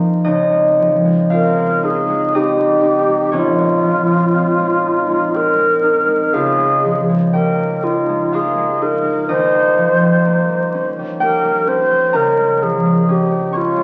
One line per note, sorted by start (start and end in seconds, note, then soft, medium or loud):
0.00 0.32 G#1 soft
0.00 0.78 F3 soft
0.00 0.35 G#3 soft
0.00 0.31 A#3 soft
0.00 1.30 C4 soft
0.00 0.25 D#4 soft
0.00 0.89 G#4 soft
0.00 0.91 C5 soft
0.00 0.23 D#5 medium
0.24 3.38 C#2 medium
0.24 1.82 D#4 medium
0.24 2.34 D#5 medium
0.52 1.04 G#3 soft
0.80 3.82 F3 soft
1.05 1.55 G#3 soft
1.30 2.34 C4 soft
1.30 5.22 F4 medium
1.30 1.86 A#4 medium
1.30 5.20 F5 medium
1.57 2.08 G#3 soft
1.83 2.34 D#4 soft
1.83 2.37 G#4 medium
2.10 2.58 G#3 soft
2.35 4.33 C4 soft
2.35 2.82 D#4 medium
2.35 3.34 G4 medium
2.35 6.25 D#5 medium
2.60 3.07 G#3 soft
2.83 4.84 D#4 soft
3.08 3.57 G#3 soft
3.32 6.37 A#1 medium
3.32 7.23 C#4 medium
3.32 5.38 F4 medium
3.32 7.22 C#5 medium
3.58 4.06 G#3 soft
3.83 6.83 F3 soft
4.08 4.58 G#3 soft
4.34 5.33 C4 soft
4.59 5.08 G#3 soft
4.85 5.82 D#4 soft
5.09 5.57 G#3 soft
5.34 6.37 C4 soft
5.34 6.35 A#4 medium
5.58 6.07 G#3 soft
5.83 7.82 D#4 soft
6.08 6.57 G#3 soft
6.34 9.34 C#2 medium
6.34 8.32 F4 medium
6.34 7.02 G#4 medium
6.34 8.31 F5 medium
6.58 7.08 G#3 soft
6.84 9.76 F3 soft
7.09 7.57 G#3 soft
7.33 8.32 A#3 soft
7.33 11.20 G4 soft
7.33 7.85 A#4 medium
7.33 9.01 G5 medium
7.59 8.08 G#3 soft
7.83 8.80 D#4 soft
7.83 8.37 F4 medium
8.09 8.56 G#3 soft
8.32 10.25 A#3 medium
8.32 12.24 F4 medium
8.32 8.84 G#4 medium
8.32 12.22 F5 medium
8.57 9.04 G#3 soft
8.82 9.29 D#4 soft
8.82 9.29 A#4 medium
9.05 9.33 G#3 soft
9.29 12.19 D#2 medium
9.29 12.20 D#4 medium
9.29 10.91 C5 medium
9.29 12.19 D#5 medium
9.54 10.00 G3 soft
9.77 12.61 F3 soft
10.02 10.48 G3 soft
10.26 11.20 A#3 soft
10.49 10.98 G3 soft
10.74 11.66 C#4 soft
10.99 11.43 G3 soft
11.20 13.83 A#3 soft
11.20 12.20 G4 medium
11.20 11.70 A#4 medium
11.20 12.19 G5 medium
11.44 11.90 G3 soft
11.67 13.07 C#4 soft
11.67 12.17 C5 medium
11.91 12.19 G3 soft
12.13 13.83 C#2 soft
12.13 13.83 A#4 medium
12.13 12.64 A#4 medium
12.13 13.83 A#5 medium
12.38 12.84 G#3 soft
12.62 13.83 F3 soft
12.62 13.12 G#4 medium
12.85 13.30 G#3 soft
13.08 13.53 C#4 soft
13.08 13.58 G4 soft
13.32 13.76 G#3 soft
13.53 13.83 C#4 soft
13.53 13.83 C#5 medium
13.53 13.83 C#6 medium
13.57 13.83 F4 medium
13.77 13.83 G#3 soft